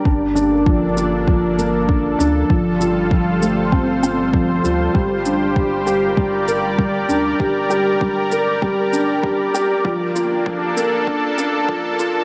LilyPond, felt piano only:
\new Staff \with { instrumentName = "Felt piano" } { \time 4/4 \key g \minor \tempo 4 = 98 d'8 d'8 f8 f'8 f8 bes8 d'8 d'8 | f8 f'8 f8 a8 c'8 c'8 f8 f'8 | g8 d'8 g'8 g'8 g8 bes'8 g8 d'8 | g'8 g'8 g8 bes'8 g8 d'8 g'8 g'8 |
f8 f'8 f8 bes8 d'8 d'8 f8 f'8 | }